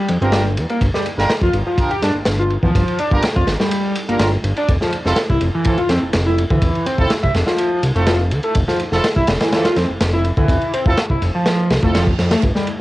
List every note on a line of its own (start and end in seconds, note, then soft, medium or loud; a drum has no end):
0.08 0.18 F2 medium
0.08 ride medium
0.21 0.59 G1 medium
0.21 0.27 C4 medium
0.21 0.41 D4 medium
0.21 0.41 F4 medium
0.21 0.41 G4 medium
0.21 0.41 A#4 medium
0.21 ride soft
0.32 0.45 G3 medium
0.32 snare loud
0.32 ride medium
0.57 0.66 E2 medium
0.57 ride medium
0.69 0.78 A#3 medium
0.69 ride soft
0.81 0.90 G1 loud
0.81 kick loud
0.81 ride medium
0.94 1.02 G3 loud
0.94 snare soft
1.06 ride medium
1.18 1.26 G1 loud
1.18 1.30 D4 loud
1.18 1.30 F4 medium
1.18 1.30 G4 medium
1.18 1.30 A#4 loud
1.18 snare soft
1.30 snare loud
1.30 ride medium
1.41 1.50 F2 medium
1.41 1.51 F4 loud
1.41 kick loud
1.53 1.63 G1 loud
1.53 ride medium
1.66 1.89 F3 medium
1.78 1.91 D4 medium
1.78 1.91 F4 medium
1.78 1.91 G4 medium
1.78 1.91 A#4 medium
1.78 kick loud
1.78 ride medium
1.91 1.99 G4 loud
1.91 ride soft
2.02 2.11 G2 medium
2.02 2.12 D4 medium
2.02 snare soft
2.02 ride medium
2.14 2.24 G1 soft
2.25 2.58 G1 medium
2.25 snare loud
2.25 ride loud
2.39 2.48 F4 loud
2.50 ride medium
2.63 2.71 E2 loud
2.63 2.98 F3 medium
2.63 kick medium
2.75 2.84 G1 loud
2.75 kick loud
2.75 ride medium
2.88 ride soft
2.99 3.08 D4 medium
2.99 ride medium
3.11 3.20 G1 loud
3.11 3.24 D4 loud
3.11 3.24 F4 medium
3.11 3.24 G4 medium
3.11 3.24 A#4 loud
3.11 kick loud
3.22 snare loud
3.22 ride medium
3.36 3.45 F2 medium
3.36 3.44 F4 loud
3.36 kick loud
3.47 3.56 G1 loud
3.47 snare medium
3.47 ride medium
3.60 3.71 G3 medium
3.60 snare medium
3.71 3.83 G3 loud
3.71 ride medium
3.85 3.93 G3 medium
3.96 ride medium
4.09 4.18 G1 soft
4.09 4.14 A#3 medium
4.09 4.28 D4 medium
4.09 4.28 F4 medium
4.09 4.28 G4 medium
4.09 4.28 A#4 medium
4.09 ride soft
4.20 4.38 G1 medium
4.20 4.26 F4 medium
4.20 snare loud
4.20 ride medium
4.44 4.53 G1 loud
4.44 ride medium
4.57 4.68 D4 loud
4.57 ride soft
4.69 4.78 F1 loud
4.69 kick loud
4.69 ride medium
4.81 4.90 F3 loud
4.81 snare soft
4.93 ride medium
5.05 5.14 F1 loud
5.05 5.17 C4 loud
5.05 5.17 E4 medium
5.05 5.17 F4 loud
5.05 5.17 A4 loud
5.05 snare soft
5.16 snare loud
5.16 ride loud
5.30 5.38 C2 medium
5.30 5.38 E4 loud
5.30 kick medium
5.41 5.50 F1 loud
5.41 ride medium
5.54 5.77 E3 medium
5.64 5.78 C4 medium
5.64 5.78 E4 medium
5.64 5.78 F4 medium
5.64 5.78 A4 medium
5.64 kick loud
5.64 ride medium
5.78 5.86 F4 loud
5.78 ride soft
5.89 5.99 F2 medium
5.89 5.99 C4 medium
5.89 snare soft
5.89 ride medium
6.03 6.12 F1 soft
6.13 6.45 F1 medium
6.13 snare loud
6.13 ride medium
6.26 6.35 E4 loud
6.38 ride medium
6.50 6.59 D2 loud
6.50 6.85 E3 medium
6.50 kick medium
6.62 6.71 F1 loud
6.62 kick loud
6.62 ride medium
6.75 ride soft
6.86 6.95 C4 medium
6.86 ride medium
6.98 7.07 F1 loud
6.98 7.11 C4 loud
6.98 7.11 E4 medium
6.98 7.11 F4 medium
6.98 7.11 A4 loud
6.98 kick loud
7.10 snare loud
7.10 ride medium
7.23 7.32 C2 medium
7.23 7.31 E4 loud
7.23 kick medium
7.34 7.44 F1 loud
7.34 snare medium
7.34 ride medium
7.47 7.58 F3 medium
7.47 snare medium
7.58 7.70 F3 loud
7.58 ride medium
7.71 7.80 F3 medium
7.83 7.92 C2 medium
7.83 ride medium
7.95 8.33 F1 medium
7.95 8.01 A3 medium
7.95 8.15 C4 medium
7.95 8.15 E4 medium
7.95 8.15 F4 medium
7.95 8.15 A4 medium
7.95 ride soft
8.07 8.19 F3 medium
8.07 snare loud
8.07 ride medium
8.31 8.40 D2 medium
8.31 ride medium
8.43 8.52 A3 medium
8.43 ride soft
8.55 8.65 F1 loud
8.55 kick loud
8.55 ride medium
8.68 8.76 F3 loud
8.68 snare soft
8.80 ride medium
8.92 9.01 F1 loud
8.92 9.04 C4 loud
8.92 9.04 E4 medium
8.92 9.04 F4 medium
8.92 9.04 A4 loud
8.92 snare soft
9.04 snare loud
9.04 ride medium
9.16 9.25 C2 medium
9.16 9.25 E4 loud
9.16 kick loud
9.27 9.37 F1 loud
9.27 snare loud
9.27 ride medium
9.40 9.64 E3 medium
9.40 snare loud
9.40 ride medium
9.52 9.65 C4 medium
9.52 9.65 E4 medium
9.52 9.65 F4 medium
9.52 9.65 A4 medium
9.52 snare loud
9.52 ride medium
9.65 9.73 F4 loud
9.65 snare loud
9.65 ride medium
9.76 9.86 F2 medium
9.76 9.86 C4 medium
9.76 snare soft
9.76 ride medium
9.89 9.98 F1 soft
10.00 10.32 F1 medium
10.00 snare loud
10.00 ride loud
10.13 10.22 E4 loud
10.24 ride medium
10.37 10.46 D2 loud
10.37 10.72 E3 medium
10.37 kick loud
10.48 10.58 F1 loud
10.48 kick loud
10.48 ride medium
10.61 ride soft
10.73 10.83 C4 medium
10.73 ride medium
10.86 10.94 F1 loud
10.86 10.98 C4 loud
10.86 10.98 E4 medium
10.86 10.98 F4 medium
10.86 10.98 A4 loud
10.86 kick loud
10.97 snare loud
10.97 ride medium
11.10 11.18 C2 medium
11.10 11.19 E4 loud
11.10 kick loud
11.22 11.31 F1 loud
11.22 ride medium
11.34 11.45 F3 medium
11.45 11.57 F3 loud
11.45 snare loud
11.45 ride medium
11.45 reverse cymbal medium
11.58 11.67 F3 medium
11.70 11.79 C2 medium
11.70 snare medium
11.70 ride medium
11.82 12.13 F1 medium
11.82 11.88 A3 medium
11.82 12.03 C4 medium
11.82 12.03 E4 medium
11.82 12.02 F4 medium
11.82 12.02 A4 medium
11.82 kick medium
11.94 12.06 F3 medium
11.94 snare loud
11.94 ride medium
12.07 kick medium
12.18 12.36 F2 medium
12.18 snare soft
12.18 ride medium
12.31 12.39 A3 medium
12.31 snare loud
12.31 ride medium
12.43 12.52 G1 loud
12.43 kick loud
12.43 ride medium
12.55 12.64 G3 loud
12.55 snare soft
12.67 ride medium